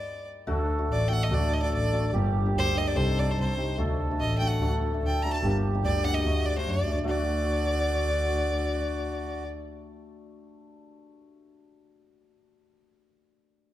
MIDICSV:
0, 0, Header, 1, 5, 480
1, 0, Start_track
1, 0, Tempo, 412371
1, 566, Time_signature, 2, 2, 24, 8
1, 6799, Tempo, 404858
1, 16158, End_track
2, 0, Start_track
2, 0, Title_t, "Violin"
2, 0, Program_c, 0, 40
2, 0, Note_on_c, 0, 74, 74
2, 315, Note_off_c, 0, 74, 0
2, 1078, Note_on_c, 0, 74, 94
2, 1260, Note_on_c, 0, 79, 84
2, 1278, Note_off_c, 0, 74, 0
2, 1313, Note_on_c, 0, 78, 103
2, 1330, Note_off_c, 0, 79, 0
2, 1434, Note_on_c, 0, 75, 86
2, 1452, Note_off_c, 0, 78, 0
2, 1559, Note_on_c, 0, 74, 105
2, 1576, Note_off_c, 0, 75, 0
2, 1784, Note_on_c, 0, 75, 83
2, 1802, Note_off_c, 0, 74, 0
2, 1881, Note_off_c, 0, 75, 0
2, 1888, Note_on_c, 0, 74, 85
2, 2003, Note_off_c, 0, 74, 0
2, 2016, Note_on_c, 0, 74, 89
2, 2464, Note_off_c, 0, 74, 0
2, 3004, Note_on_c, 0, 72, 119
2, 3229, Note_on_c, 0, 75, 92
2, 3247, Note_off_c, 0, 72, 0
2, 3343, Note_on_c, 0, 74, 94
2, 3361, Note_off_c, 0, 75, 0
2, 3451, Note_on_c, 0, 72, 106
2, 3468, Note_off_c, 0, 74, 0
2, 3716, Note_on_c, 0, 74, 93
2, 3734, Note_off_c, 0, 72, 0
2, 3853, Note_on_c, 0, 72, 90
2, 3871, Note_off_c, 0, 74, 0
2, 3949, Note_off_c, 0, 72, 0
2, 3956, Note_on_c, 0, 72, 85
2, 4392, Note_off_c, 0, 72, 0
2, 4892, Note_on_c, 0, 75, 95
2, 5095, Note_off_c, 0, 75, 0
2, 5102, Note_on_c, 0, 79, 105
2, 5226, Note_on_c, 0, 78, 87
2, 5243, Note_off_c, 0, 79, 0
2, 5477, Note_off_c, 0, 78, 0
2, 5897, Note_on_c, 0, 79, 92
2, 6078, Note_on_c, 0, 82, 111
2, 6095, Note_off_c, 0, 79, 0
2, 6196, Note_off_c, 0, 82, 0
2, 6203, Note_on_c, 0, 81, 84
2, 6425, Note_off_c, 0, 81, 0
2, 6807, Note_on_c, 0, 74, 98
2, 7040, Note_on_c, 0, 78, 104
2, 7057, Note_off_c, 0, 74, 0
2, 7156, Note_on_c, 0, 75, 91
2, 7174, Note_off_c, 0, 78, 0
2, 7528, Note_on_c, 0, 74, 97
2, 7546, Note_off_c, 0, 75, 0
2, 7647, Note_off_c, 0, 74, 0
2, 7675, Note_on_c, 0, 72, 78
2, 7816, Note_on_c, 0, 74, 87
2, 7833, Note_off_c, 0, 72, 0
2, 8152, Note_off_c, 0, 74, 0
2, 8264, Note_on_c, 0, 74, 102
2, 11079, Note_off_c, 0, 74, 0
2, 16158, End_track
3, 0, Start_track
3, 0, Title_t, "Accordion"
3, 0, Program_c, 1, 21
3, 564, Note_on_c, 1, 69, 127
3, 2450, Note_off_c, 1, 69, 0
3, 2480, Note_on_c, 1, 67, 122
3, 3403, Note_off_c, 1, 67, 0
3, 3435, Note_on_c, 1, 69, 115
3, 4119, Note_off_c, 1, 69, 0
3, 4409, Note_on_c, 1, 69, 127
3, 6321, Note_on_c, 1, 67, 107
3, 6377, Note_off_c, 1, 69, 0
3, 7264, Note_on_c, 1, 66, 93
3, 7310, Note_off_c, 1, 67, 0
3, 7950, Note_off_c, 1, 66, 0
3, 8225, Note_on_c, 1, 66, 101
3, 11060, Note_off_c, 1, 66, 0
3, 16158, End_track
4, 0, Start_track
4, 0, Title_t, "Hammered dulcimer"
4, 0, Program_c, 2, 15
4, 547, Note_on_c, 2, 57, 98
4, 548, Note_on_c, 2, 66, 120
4, 557, Note_on_c, 2, 62, 97
4, 738, Note_off_c, 2, 57, 0
4, 738, Note_off_c, 2, 66, 0
4, 743, Note_off_c, 2, 62, 0
4, 914, Note_on_c, 2, 57, 64
4, 915, Note_on_c, 2, 62, 61
4, 917, Note_on_c, 2, 66, 81
4, 1103, Note_off_c, 2, 62, 0
4, 1103, Note_off_c, 2, 66, 0
4, 1104, Note_off_c, 2, 57, 0
4, 1270, Note_on_c, 2, 62, 58
4, 1272, Note_on_c, 2, 57, 68
4, 1276, Note_on_c, 2, 66, 76
4, 1401, Note_off_c, 2, 62, 0
4, 1403, Note_off_c, 2, 66, 0
4, 1404, Note_off_c, 2, 57, 0
4, 1520, Note_on_c, 2, 57, 86
4, 1521, Note_on_c, 2, 62, 81
4, 1525, Note_on_c, 2, 66, 104
4, 1708, Note_off_c, 2, 57, 0
4, 1708, Note_off_c, 2, 62, 0
4, 1710, Note_off_c, 2, 66, 0
4, 1886, Note_on_c, 2, 57, 62
4, 1888, Note_on_c, 2, 62, 67
4, 1894, Note_on_c, 2, 66, 70
4, 2071, Note_off_c, 2, 57, 0
4, 2072, Note_off_c, 2, 62, 0
4, 2075, Note_off_c, 2, 66, 0
4, 2238, Note_on_c, 2, 57, 74
4, 2250, Note_on_c, 2, 62, 63
4, 2253, Note_on_c, 2, 66, 80
4, 2368, Note_off_c, 2, 57, 0
4, 2373, Note_off_c, 2, 62, 0
4, 2375, Note_off_c, 2, 66, 0
4, 2487, Note_on_c, 2, 58, 72
4, 2487, Note_on_c, 2, 62, 72
4, 2497, Note_on_c, 2, 67, 88
4, 2672, Note_off_c, 2, 62, 0
4, 2673, Note_off_c, 2, 58, 0
4, 2677, Note_off_c, 2, 67, 0
4, 2857, Note_on_c, 2, 62, 58
4, 2862, Note_on_c, 2, 58, 58
4, 2862, Note_on_c, 2, 67, 78
4, 3037, Note_off_c, 2, 62, 0
4, 3040, Note_off_c, 2, 58, 0
4, 3040, Note_off_c, 2, 67, 0
4, 3195, Note_on_c, 2, 62, 65
4, 3196, Note_on_c, 2, 58, 75
4, 3210, Note_on_c, 2, 67, 82
4, 3326, Note_off_c, 2, 62, 0
4, 3327, Note_off_c, 2, 58, 0
4, 3334, Note_off_c, 2, 67, 0
4, 3435, Note_on_c, 2, 60, 78
4, 3439, Note_on_c, 2, 67, 98
4, 3440, Note_on_c, 2, 63, 72
4, 3626, Note_off_c, 2, 60, 0
4, 3628, Note_off_c, 2, 67, 0
4, 3629, Note_off_c, 2, 63, 0
4, 3800, Note_on_c, 2, 60, 65
4, 3803, Note_on_c, 2, 67, 73
4, 3805, Note_on_c, 2, 63, 57
4, 3989, Note_off_c, 2, 60, 0
4, 3989, Note_off_c, 2, 67, 0
4, 3991, Note_off_c, 2, 63, 0
4, 4158, Note_on_c, 2, 60, 67
4, 4162, Note_on_c, 2, 63, 64
4, 4168, Note_on_c, 2, 67, 70
4, 4289, Note_off_c, 2, 60, 0
4, 4289, Note_off_c, 2, 63, 0
4, 4290, Note_off_c, 2, 67, 0
4, 4395, Note_on_c, 2, 57, 87
4, 4397, Note_on_c, 2, 62, 75
4, 4400, Note_on_c, 2, 66, 77
4, 4586, Note_off_c, 2, 57, 0
4, 4586, Note_off_c, 2, 62, 0
4, 4586, Note_off_c, 2, 66, 0
4, 4782, Note_on_c, 2, 62, 58
4, 4784, Note_on_c, 2, 57, 60
4, 4789, Note_on_c, 2, 66, 73
4, 4957, Note_off_c, 2, 62, 0
4, 4959, Note_off_c, 2, 57, 0
4, 4961, Note_off_c, 2, 66, 0
4, 5128, Note_on_c, 2, 57, 76
4, 5139, Note_on_c, 2, 62, 66
4, 5140, Note_on_c, 2, 66, 78
4, 5250, Note_off_c, 2, 57, 0
4, 5255, Note_off_c, 2, 62, 0
4, 5255, Note_off_c, 2, 66, 0
4, 5370, Note_on_c, 2, 62, 82
4, 5372, Note_on_c, 2, 66, 95
4, 5373, Note_on_c, 2, 57, 77
4, 5549, Note_off_c, 2, 62, 0
4, 5549, Note_off_c, 2, 66, 0
4, 5551, Note_off_c, 2, 57, 0
4, 5748, Note_on_c, 2, 57, 63
4, 5751, Note_on_c, 2, 62, 59
4, 5755, Note_on_c, 2, 69, 73
4, 5918, Note_off_c, 2, 57, 0
4, 5918, Note_off_c, 2, 62, 0
4, 5919, Note_off_c, 2, 69, 0
4, 6107, Note_on_c, 2, 57, 73
4, 6109, Note_on_c, 2, 66, 75
4, 6113, Note_on_c, 2, 62, 64
4, 6216, Note_off_c, 2, 57, 0
4, 6216, Note_off_c, 2, 66, 0
4, 6218, Note_off_c, 2, 62, 0
4, 6340, Note_on_c, 2, 62, 76
4, 6348, Note_on_c, 2, 67, 92
4, 6351, Note_on_c, 2, 58, 94
4, 6510, Note_off_c, 2, 62, 0
4, 6514, Note_off_c, 2, 67, 0
4, 6516, Note_off_c, 2, 58, 0
4, 6688, Note_on_c, 2, 58, 66
4, 6690, Note_on_c, 2, 67, 70
4, 6691, Note_on_c, 2, 62, 64
4, 6863, Note_off_c, 2, 67, 0
4, 6865, Note_off_c, 2, 58, 0
4, 6865, Note_off_c, 2, 62, 0
4, 7048, Note_on_c, 2, 62, 61
4, 7058, Note_on_c, 2, 67, 78
4, 7059, Note_on_c, 2, 58, 65
4, 7165, Note_off_c, 2, 62, 0
4, 7170, Note_off_c, 2, 67, 0
4, 7171, Note_off_c, 2, 58, 0
4, 7294, Note_on_c, 2, 57, 83
4, 7302, Note_on_c, 2, 62, 71
4, 7302, Note_on_c, 2, 66, 82
4, 7469, Note_off_c, 2, 57, 0
4, 7473, Note_off_c, 2, 62, 0
4, 7473, Note_off_c, 2, 66, 0
4, 7657, Note_on_c, 2, 66, 78
4, 7662, Note_on_c, 2, 57, 68
4, 7663, Note_on_c, 2, 62, 59
4, 7831, Note_off_c, 2, 66, 0
4, 7834, Note_off_c, 2, 62, 0
4, 7835, Note_off_c, 2, 57, 0
4, 8011, Note_on_c, 2, 57, 69
4, 8019, Note_on_c, 2, 62, 66
4, 8022, Note_on_c, 2, 66, 66
4, 8131, Note_off_c, 2, 57, 0
4, 8133, Note_off_c, 2, 62, 0
4, 8133, Note_off_c, 2, 66, 0
4, 8223, Note_on_c, 2, 57, 92
4, 8254, Note_on_c, 2, 62, 78
4, 8279, Note_on_c, 2, 66, 103
4, 12131, Note_off_c, 2, 66, 0
4, 12679, Note_off_c, 2, 62, 0
4, 13485, Note_off_c, 2, 57, 0
4, 16158, End_track
5, 0, Start_track
5, 0, Title_t, "Double bass"
5, 0, Program_c, 3, 43
5, 557, Note_on_c, 3, 38, 98
5, 850, Note_off_c, 3, 38, 0
5, 1036, Note_on_c, 3, 33, 85
5, 1330, Note_off_c, 3, 33, 0
5, 1512, Note_on_c, 3, 38, 106
5, 1807, Note_off_c, 3, 38, 0
5, 2002, Note_on_c, 3, 33, 76
5, 2295, Note_off_c, 3, 33, 0
5, 2485, Note_on_c, 3, 31, 120
5, 2777, Note_off_c, 3, 31, 0
5, 2967, Note_on_c, 3, 38, 96
5, 3258, Note_off_c, 3, 38, 0
5, 3438, Note_on_c, 3, 36, 111
5, 3731, Note_off_c, 3, 36, 0
5, 3921, Note_on_c, 3, 36, 94
5, 4213, Note_off_c, 3, 36, 0
5, 4407, Note_on_c, 3, 38, 90
5, 4696, Note_off_c, 3, 38, 0
5, 4872, Note_on_c, 3, 33, 78
5, 5165, Note_off_c, 3, 33, 0
5, 5355, Note_on_c, 3, 38, 90
5, 5646, Note_off_c, 3, 38, 0
5, 5847, Note_on_c, 3, 38, 89
5, 6133, Note_off_c, 3, 38, 0
5, 6316, Note_on_c, 3, 31, 107
5, 6603, Note_off_c, 3, 31, 0
5, 6788, Note_on_c, 3, 38, 99
5, 7081, Note_off_c, 3, 38, 0
5, 7281, Note_on_c, 3, 38, 90
5, 7571, Note_off_c, 3, 38, 0
5, 7763, Note_on_c, 3, 42, 78
5, 7981, Note_off_c, 3, 42, 0
5, 7998, Note_on_c, 3, 38, 94
5, 8219, Note_off_c, 3, 38, 0
5, 8243, Note_on_c, 3, 38, 102
5, 11069, Note_off_c, 3, 38, 0
5, 16158, End_track
0, 0, End_of_file